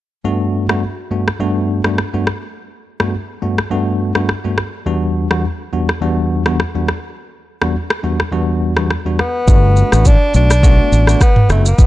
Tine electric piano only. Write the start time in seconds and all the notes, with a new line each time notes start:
0.24 G2 A3 B3 D4 F#4
0.69 G2 A3 B3 D4 F#4
1.11 G2 A3 B3 D4 F#4
1.40 G2 A3 B3 D4 F#4
1.85 G2 A3 B3 D4 F#4
2.14 G2 A3 B3 D4 F#4
3.00 G2 A3 B3 D4 F#4
3.42 G2 A3 B3 D4 F#4
3.71 G2 A3 B3 D4 F#4
4.15 G2 A3 B3 D4 F#4
4.44 G2 A3 B3 D4 F#4
4.86 E2 G3 B3 D4 F#4
5.31 E2 G3 B3 D4 F#4
5.73 E2 G3 B3 D4 F#4
6.01 E2 G3 B3 D4 F#4
6.46 E2 G3 B3 D4 F#4
6.75 E2 G3 B3 D4 F#4
7.61 E2 G3 B3 D4 F#4
8.03 E2 G3 B3 D4 F#4
8.32 E2 G3 B3 D4 F#4
8.77 E2 G3 B3 D4 F#4
9.06 E2 G3 B3 D4 F#4
9.47 A3 B3 D4 F#4
9.92 A3 B3 D4 F#4
10.34 A3 B3 D4 F#4
10.63 A3 B3 D4 F#4
11.08 A3 B3 D4 F#4
11.49 A3 B3 D4 F#4